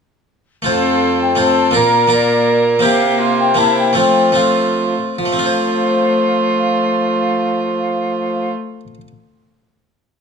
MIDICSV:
0, 0, Header, 1, 6, 480
1, 0, Start_track
1, 0, Key_signature, -1, "major"
1, 0, Tempo, 361228
1, 894, Time_signature, 3, 2, 24, 8
1, 4253, Tempo, 385604
1, 5693, Tempo, 424929
1, 12294, End_track
2, 0, Start_track
2, 0, Title_t, "Flute"
2, 0, Program_c, 0, 73
2, 917, Note_on_c, 0, 77, 83
2, 1576, Note_off_c, 0, 77, 0
2, 1610, Note_on_c, 0, 79, 80
2, 1848, Note_off_c, 0, 79, 0
2, 1871, Note_on_c, 0, 81, 86
2, 2331, Note_off_c, 0, 81, 0
2, 2337, Note_on_c, 0, 82, 90
2, 2802, Note_off_c, 0, 82, 0
2, 2829, Note_on_c, 0, 74, 70
2, 3521, Note_off_c, 0, 74, 0
2, 3787, Note_on_c, 0, 77, 95
2, 4447, Note_off_c, 0, 77, 0
2, 4492, Note_on_c, 0, 79, 88
2, 4717, Note_on_c, 0, 81, 97
2, 4736, Note_off_c, 0, 79, 0
2, 4957, Note_off_c, 0, 81, 0
2, 4979, Note_on_c, 0, 79, 81
2, 5206, Note_off_c, 0, 79, 0
2, 5221, Note_on_c, 0, 79, 89
2, 5700, Note_on_c, 0, 77, 65
2, 5717, Note_off_c, 0, 79, 0
2, 6156, Note_off_c, 0, 77, 0
2, 6637, Note_on_c, 0, 77, 75
2, 10381, Note_off_c, 0, 77, 0
2, 12294, End_track
3, 0, Start_track
3, 0, Title_t, "Violin"
3, 0, Program_c, 1, 40
3, 883, Note_on_c, 1, 69, 59
3, 1796, Note_off_c, 1, 69, 0
3, 1851, Note_on_c, 1, 69, 52
3, 2330, Note_on_c, 1, 70, 57
3, 2349, Note_off_c, 1, 69, 0
3, 2808, Note_off_c, 1, 70, 0
3, 2826, Note_on_c, 1, 70, 60
3, 3786, Note_on_c, 1, 67, 64
3, 3806, Note_off_c, 1, 70, 0
3, 4257, Note_on_c, 1, 65, 60
3, 4275, Note_off_c, 1, 67, 0
3, 4727, Note_on_c, 1, 64, 65
3, 4745, Note_off_c, 1, 65, 0
3, 5203, Note_off_c, 1, 64, 0
3, 5208, Note_on_c, 1, 65, 58
3, 5682, Note_off_c, 1, 65, 0
3, 5689, Note_on_c, 1, 65, 53
3, 6374, Note_off_c, 1, 65, 0
3, 6634, Note_on_c, 1, 65, 57
3, 10380, Note_off_c, 1, 65, 0
3, 12294, End_track
4, 0, Start_track
4, 0, Title_t, "Harpsichord"
4, 0, Program_c, 2, 6
4, 827, Note_on_c, 2, 57, 43
4, 852, Note_on_c, 2, 65, 43
4, 871, Note_on_c, 2, 72, 42
4, 882, Note_on_c, 2, 41, 50
4, 1783, Note_off_c, 2, 57, 0
4, 1798, Note_off_c, 2, 65, 0
4, 1799, Note_on_c, 2, 57, 43
4, 1811, Note_off_c, 2, 72, 0
4, 1814, Note_on_c, 2, 65, 42
4, 1827, Note_on_c, 2, 72, 44
4, 2273, Note_off_c, 2, 41, 0
4, 2273, Note_on_c, 2, 58, 45
4, 2283, Note_off_c, 2, 65, 0
4, 2289, Note_off_c, 2, 57, 0
4, 2299, Note_on_c, 2, 65, 45
4, 2304, Note_off_c, 2, 72, 0
4, 2313, Note_on_c, 2, 70, 43
4, 2327, Note_on_c, 2, 46, 46
4, 2740, Note_off_c, 2, 58, 0
4, 2756, Note_off_c, 2, 65, 0
4, 2756, Note_on_c, 2, 58, 45
4, 2772, Note_off_c, 2, 70, 0
4, 2772, Note_on_c, 2, 65, 47
4, 2788, Note_on_c, 2, 70, 48
4, 3695, Note_off_c, 2, 58, 0
4, 3710, Note_off_c, 2, 46, 0
4, 3711, Note_on_c, 2, 58, 51
4, 3718, Note_off_c, 2, 65, 0
4, 3726, Note_off_c, 2, 70, 0
4, 3726, Note_on_c, 2, 60, 49
4, 3749, Note_on_c, 2, 67, 51
4, 3759, Note_on_c, 2, 48, 55
4, 4665, Note_off_c, 2, 58, 0
4, 4673, Note_off_c, 2, 60, 0
4, 4680, Note_on_c, 2, 58, 49
4, 4684, Note_off_c, 2, 67, 0
4, 4693, Note_on_c, 2, 60, 46
4, 4711, Note_on_c, 2, 64, 50
4, 5147, Note_off_c, 2, 48, 0
4, 5155, Note_off_c, 2, 60, 0
4, 5159, Note_on_c, 2, 57, 46
4, 5165, Note_off_c, 2, 58, 0
4, 5170, Note_on_c, 2, 60, 42
4, 5181, Note_off_c, 2, 64, 0
4, 5185, Note_on_c, 2, 65, 44
4, 5208, Note_on_c, 2, 53, 50
4, 5634, Note_off_c, 2, 57, 0
4, 5649, Note_on_c, 2, 57, 40
4, 5651, Note_off_c, 2, 60, 0
4, 5666, Note_on_c, 2, 60, 39
4, 5670, Note_off_c, 2, 65, 0
4, 5686, Note_on_c, 2, 65, 43
4, 6348, Note_off_c, 2, 53, 0
4, 6581, Note_off_c, 2, 57, 0
4, 6589, Note_off_c, 2, 60, 0
4, 6598, Note_off_c, 2, 65, 0
4, 6628, Note_on_c, 2, 53, 47
4, 6706, Note_on_c, 2, 57, 47
4, 6786, Note_on_c, 2, 60, 49
4, 6860, Note_on_c, 2, 65, 50
4, 6937, Note_on_c, 2, 72, 46
4, 10714, Note_off_c, 2, 53, 0
4, 10791, Note_off_c, 2, 57, 0
4, 10871, Note_off_c, 2, 60, 0
4, 10945, Note_off_c, 2, 65, 0
4, 11022, Note_off_c, 2, 72, 0
4, 12294, End_track
5, 0, Start_track
5, 0, Title_t, "Viola"
5, 0, Program_c, 3, 41
5, 899, Note_on_c, 3, 60, 54
5, 1804, Note_off_c, 3, 60, 0
5, 1867, Note_on_c, 3, 60, 55
5, 2343, Note_on_c, 3, 58, 54
5, 2363, Note_off_c, 3, 60, 0
5, 2792, Note_off_c, 3, 58, 0
5, 2800, Note_on_c, 3, 58, 58
5, 3742, Note_off_c, 3, 58, 0
5, 3772, Note_on_c, 3, 58, 67
5, 4704, Note_off_c, 3, 58, 0
5, 4721, Note_on_c, 3, 58, 60
5, 5195, Note_on_c, 3, 57, 55
5, 5214, Note_off_c, 3, 58, 0
5, 5690, Note_off_c, 3, 57, 0
5, 5695, Note_on_c, 3, 57, 55
5, 6377, Note_off_c, 3, 57, 0
5, 6639, Note_on_c, 3, 57, 57
5, 10382, Note_off_c, 3, 57, 0
5, 12294, End_track
6, 0, Start_track
6, 0, Title_t, "Bassoon"
6, 0, Program_c, 4, 70
6, 906, Note_on_c, 4, 41, 65
6, 2285, Note_off_c, 4, 41, 0
6, 2335, Note_on_c, 4, 46, 62
6, 3758, Note_on_c, 4, 48, 71
6, 3778, Note_off_c, 4, 46, 0
6, 5190, Note_off_c, 4, 48, 0
6, 5198, Note_on_c, 4, 53, 61
6, 6366, Note_off_c, 4, 53, 0
6, 6628, Note_on_c, 4, 53, 64
6, 10377, Note_off_c, 4, 53, 0
6, 12294, End_track
0, 0, End_of_file